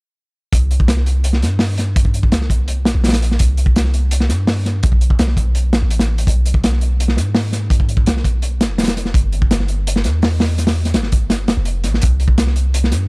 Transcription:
0.53 C2, kick, closed hi-hat
0.71 closed hi-hat
0.80 kick
0.88 snare, closed hi-hat
0.97 snare
1.06 closed hi-hat
1.24 closed hi-hat
1.33 snare
1.42 G2, snare, closed hi-hat
1.59 snare, open hi-hat
1.78 snare, closed hi-hat
1.96 kick, closed hi-hat
2.05 kick
2.14 closed hi-hat
2.23 kick
2.32 C2, snare, closed hi-hat
2.41 snare
2.50 kick, closed hi-hat
2.68 closed hi-hat
2.85 A#1, snare, closed hi-hat
2.95 A#1
3.04 snare, closed hi-hat
3.08 snare, closed hi-hat
3.13 snare, closed hi-hat
3.22 snare, closed hi-hat
3.31 snare
3.39 C2, kick, closed hi-hat
3.57 closed hi-hat
3.66 kick
3.76 snare, closed hi-hat
3.84 snare
3.94 closed hi-hat
4.11 closed hi-hat
4.20 snare
4.29 G2, snare, closed hi-hat
4.47 snare, open hi-hat
4.65 snare, closed hi-hat
4.83 B1, kick, closed hi-hat
4.92 kick
5.01 closed hi-hat
5.10 kick
5.19 B1, snare, closed hi-hat
5.28 snare
5.37 kick, closed hi-hat
5.55 closed hi-hat
5.73 A1, snare, closed hi-hat
5.82 A1
5.90 closed hi-hat
5.99 snare, closed hi-hat
6.18 closed hi-hat
6.27 B1, kick, closed hi-hat
6.46 closed hi-hat
6.54 kick
6.64 snare, closed hi-hat
6.72 snare
6.81 closed hi-hat
7.00 closed hi-hat
7.08 snare
7.17 G#2, snare, closed hi-hat
7.35 snare, open hi-hat
7.52 snare, closed hi-hat
7.70 kick, closed hi-hat
7.80 kick
7.89 closed hi-hat
7.97 kick
8.06 B1, snare, closed hi-hat
8.17 snare
8.24 kick, closed hi-hat
8.42 closed hi-hat
8.61 G1, snare, closed hi-hat
8.70 F1
8.78 snare, closed hi-hat
8.83 snare, closed hi-hat
8.87 snare, closed hi-hat
8.97 snare, closed hi-hat
9.05 snare
9.14 G1, kick, closed hi-hat
9.32 closed hi-hat
9.42 kick
9.51 snare, closed hi-hat
9.60 snare
9.68 closed hi-hat
9.87 closed hi-hat
9.96 snare
10.04 E2, snare, closed hi-hat
10.22 snare, open hi-hat
10.40 snare, open hi-hat
10.58 snare, closed hi-hat
10.67 snare, open hi-hat
10.85 snare, closed hi-hat
10.94 G1, snare, closed hi-hat
11.03 snare
11.12 kick, closed hi-hat
11.30 snare, closed hi-hat
11.48 F1, snare, closed hi-hat
11.57 F1
11.65 closed hi-hat
11.84 A1, snare, closed hi-hat
11.94 snare
12.02 C2, kick, closed hi-hat
12.20 closed hi-hat
12.28 kick
12.38 snare, closed hi-hat
12.47 snare
12.56 closed hi-hat
12.74 closed hi-hat
12.84 snare
12.92 G2, snare, closed hi-hat

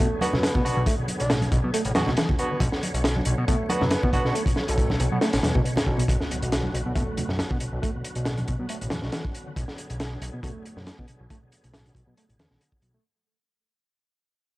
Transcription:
Already playing: D3 F#3 B3 G#4
0.00 A3, kick
0.21 B3 D4 F#4 B4, closed hi-hat, high conga
0.33 F#2 B2, snare, low conga
0.43 snare, closed hi-hat
0.55 B2, kick, low conga
0.65 B2 B3 D4 F#4, closed hi-hat
0.77 B1
0.86 A3, kick, closed hi-hat
0.98 B2
1.08 closed hi-hat, high conga
1.20 B1 B2 D5, closed hi-hat
1.30 A2, snare, closed hi-hat
1.42 B2, closed hi-hat, high conga
1.52 B1 B2, kick, closed hi-hat
1.64 B2 F#3
1.74 A3, closed hi-hat
1.85 A1 B2, closed hi-hat
1.95 E2 A2 B3 D4 F#4, snare, closed hi-hat, high conga
2.07 B1 B2, snare, low conga
2.17 E3, snare, closed hi-hat
2.29 kick, low conga
2.39 B3 D4 F#4 B4, closed hi-hat
2.51 D3 B4
2.60 B1 C#5, kick, closed hi-hat
2.72 snare
2.83 closed hi-hat, high conga
2.94 B1, closed hi-hat
3.04 snare, closed hi-hat
3.16 high conga
3.25 B1 B2, closed hi-hat
3.38 B2
3.48 B2 A3, kick, closed hi-hat
3.69 B3 D4 F#4 B4, closed hi-hat, high conga
3.81 F#2 B2, snare, low conga
3.91 snare, closed hi-hat
4.03 B2, kick, low conga
4.13 B2 B3 D4 F#4, kick, closed hi-hat
4.25 B1, snare
4.35 A3, closed hi-hat
4.46 B2, kick, closed hi-hat
4.56 snare, high conga
4.68 B1 B2 A4, closed hi-hat
4.78 A2, kick, closed hi-hat
4.90 B2, snare, high conga
5.00 B1 B2, closed hi-hat
5.12 B2 F#3
5.21 A3, snare, closed hi-hat
5.33 A1 B2, snare, closed hi-hat
5.43 E2 B2, snare, closed hi-hat, high conga
5.55 B1 B2, kick, low conga
5.65 B2, closed hi-hat
5.76 A2, snare, closed hi-hat, low conga
5.86 B1, kick
5.98 B2, closed hi-hat
6.08 B1 D3 F#3 B3 F#4, kick, closed hi-hat, impact
6.21 snare
6.31 closed hi-hat
6.42 B1, closed hi-hat
6.52 snare, closed hi-hat
6.63 high conga
6.74 B1 B2, closed hi-hat
6.86 B2
6.95 B2 A3, kick, closed hi-hat
7.17 closed hi-hat, high conga, low conga
7.29 F#2 B2, snare
7.39 snare, closed hi-hat
7.51 B2, kick
7.60 B2, closed hi-hat
7.73 B1
7.82 A3, kick, closed hi-hat
7.94 B2
8.04 closed hi-hat
8.15 B1 B2, closed hi-hat
8.25 A2, snare, closed hi-hat
8.37 B2, closed hi-hat, high conga
8.48 B1 B2, kick, closed hi-hat
8.59 B2 F#3
8.69 A3, closed hi-hat
8.81 A1 B2, closed hi-hat
8.90 E2 A2, snare, closed hi-hat, high conga, low conga
9.02 B1 B2, snare
9.12 E3, snare, closed hi-hat
9.25 kick
9.35 closed hi-hat
9.47 D3
9.56 B1 G#4, kick, closed hi-hat
9.68 snare
9.78 closed hi-hat
9.90 B1, closed hi-hat
10.00 snare, closed hi-hat
10.22 B1 B2, closed hi-hat
10.34 B2
10.43 B2 A3, kick, closed hi-hat
10.65 closed hi-hat
10.77 F#2 B2, snare
10.87 snare, closed hi-hat
10.99 B2, kick
11.08 B2, closed hi-hat
11.20 B1
11.30 A3, kick, closed hi-hat
11.42 B2
11.52 closed hi-hat
11.64 B1 B2, closed hi-hat
11.74 A2, snare, closed hi-hat
11.86 closed hi-hat
11.95 B1 B2, kick, closed hi-hat
12.07 B2 F#3
12.17 A3, closed hi-hat
12.29 A1 B2, closed hi-hat
12.39 E2 D3, snare, closed hi-hat
12.51 B1 E3, snare
12.61 D3, closed hi-hat
12.72 kick
12.82 B1 F#3, closed hi-hat
12.94 A3

